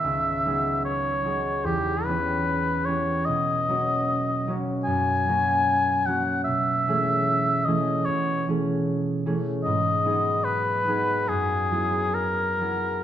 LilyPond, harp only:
\new Staff \with { instrumentName = "Harp" } { \time 4/4 \key b \major \tempo 4 = 75 <cis, b dis' gis'>8 <fis b dis' gis'>4 <fis b dis' gis'>8 e,8 <e b cis' g'>4 <e b cis' g'>8 | b,8 <fis ais cis' fis'>4 <fis ais cis' fis'>8 fis,8 <fis ais cis' fis'>4 <fis ais cis' fis'>8 | b,8 <e a cis' gis'>4 <e a cis' gis'>8 b,8 <e a cis' gis'>4 <e a cis' gis'>8 | gis,8 <fis b dis' gis'>4 <fis b dis' gis'>8 fis,8 <fis b e' gis'>4 <fis b e' gis'>8 | }